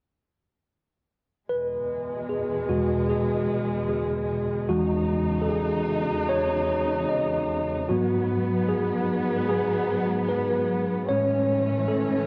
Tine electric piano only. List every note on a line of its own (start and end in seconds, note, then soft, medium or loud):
1.49 2.32 B4 medium
2.29 2.67 G#4 medium
2.69 3.86 E2 soft
2.69 3.86 B2 soft
2.69 3.87 G#3 soft
2.69 3.11 F#4 medium
3.09 3.86 G#4 medium
3.89 4.46 G#4 medium
4.69 7.86 E2 soft
4.69 7.86 E3 soft
4.69 7.86 G#3 soft
4.69 5.39 F#4 medium
5.42 5.49 A4 medium
5.49 6.32 G#4 medium
6.29 7.06 C#5 medium
7.09 7.66 D#5 medium
7.89 11.06 G#2 soft
7.89 11.06 F#3 soft
7.89 11.06 B3 soft
7.89 8.72 F#4 medium
8.69 9.48 G#4 medium
9.49 10.26 G#4 medium
10.29 10.86 B4 medium
11.09 11.63 A2 soft
11.09 11.64 G#3 soft
11.09 11.64 C#4 soft
11.09 11.92 C#5 medium
11.88 12.27 A4 medium